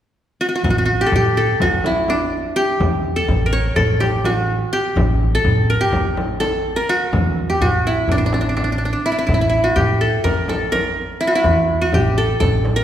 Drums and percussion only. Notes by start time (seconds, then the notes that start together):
0.64 frame drum, darbuka dum
1.12 frame drum, darbuka dum
1.37 darbuka ka
1.49 darbuka ka
1.60 frame drum, darbuka dum
1.84 darbuka tek, frame drum
2.08 darbuka tek, frame drum
2.80 darbuka dum, frame drum
3.28 frame drum, darbuka dum
3.53 darbuka ka
3.65 darbuka ka
3.76 frame drum, darbuka dum
4.01 darbuka tek, frame drum
4.24 darbuka tek, frame drum
4.97 frame drum, darbuka dum
5.44 frame drum, darbuka dum
5.69 darbuka ka
5.82 darbuka ka
5.92 frame drum, darbuka dum
6.17 darbuka tek, frame drum
6.41 darbuka tek, frame drum
7.13 frame drum, darbuka dum
7.61 frame drum, darbuka dum
7.85 darbuka ka
7.97 darbuka ka
8.08 darbuka dum, frame drum
8.33 darbuka tek, frame drum
8.57 darbuka tek, frame drum
8.81 darbuka ka
9.29 frame drum, darbuka dum
9.76 frame drum, darbuka dum
10.01 darbuka ka
10.13 darbuka ka
10.25 frame drum, darbuka dum
10.48 darbuka tek, frame drum
10.72 darbuka tek, frame drum
11.44 frame drum, darbuka dum
11.92 frame drum, darbuka dum
12.18 darbuka ka
12.30 darbuka ka
12.41 frame drum, darbuka dum
12.65 darbuka tek, frame drum